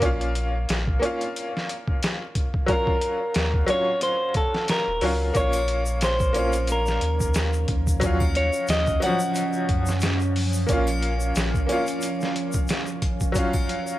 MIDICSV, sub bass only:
0, 0, Header, 1, 2, 480
1, 0, Start_track
1, 0, Key_signature, -5, "minor"
1, 0, Tempo, 666667
1, 14, Time_signature, 4, 2, 24, 8
1, 10072, End_track
2, 0, Start_track
2, 0, Title_t, "Sub bass"
2, 0, Program_c, 0, 38
2, 14, Note_on_c, 0, 34, 107
2, 474, Note_off_c, 0, 34, 0
2, 498, Note_on_c, 0, 34, 81
2, 710, Note_off_c, 0, 34, 0
2, 2417, Note_on_c, 0, 39, 78
2, 2630, Note_off_c, 0, 39, 0
2, 3508, Note_on_c, 0, 27, 89
2, 3601, Note_off_c, 0, 27, 0
2, 3612, Note_on_c, 0, 37, 84
2, 3828, Note_off_c, 0, 37, 0
2, 3852, Note_on_c, 0, 34, 99
2, 5033, Note_off_c, 0, 34, 0
2, 5051, Note_on_c, 0, 39, 105
2, 5512, Note_off_c, 0, 39, 0
2, 5535, Note_on_c, 0, 39, 92
2, 6123, Note_off_c, 0, 39, 0
2, 6253, Note_on_c, 0, 39, 79
2, 6468, Note_off_c, 0, 39, 0
2, 6977, Note_on_c, 0, 42, 107
2, 7675, Note_off_c, 0, 42, 0
2, 7696, Note_on_c, 0, 34, 104
2, 8154, Note_off_c, 0, 34, 0
2, 8177, Note_on_c, 0, 34, 83
2, 8390, Note_off_c, 0, 34, 0
2, 10072, End_track
0, 0, End_of_file